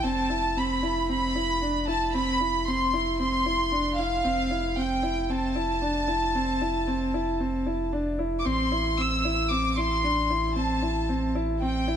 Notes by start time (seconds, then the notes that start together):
0.04 F1 C4 A5
0.30 E4
0.57 C4 B5
0.83 E4
1.09 C4 B5
1.35 E4
1.62 D4
1.88 E4 A5
2.14 C4 B5
2.41 E4
2.67 C4 C6
2.93 E4
3.20 C4 C6
3.46 E4
3.72 D4
3.99 E4 F5
4.24 F1 C4
4.50 E4
4.77 C4 G5
5.03 E4
5.29 C4 A5
5.56 E4
5.82 D4
6.08 E4
6.35 C4
6.61 E4
6.87 C4
7.14 E4
7.40 C4
7.66 E4
7.93 D4
8.19 E4
8.39 D6
8.45 A1 C4 C6
8.72 E4
8.98 C4 E6
9.25 E4
9.50 C4 D6
9.77 E4 C6
10.04 D4
10.30 E4
10.56 C4 A5
10.82 E4
11.09 C4
11.35 E4
11.62 C4 G5
11.88 E4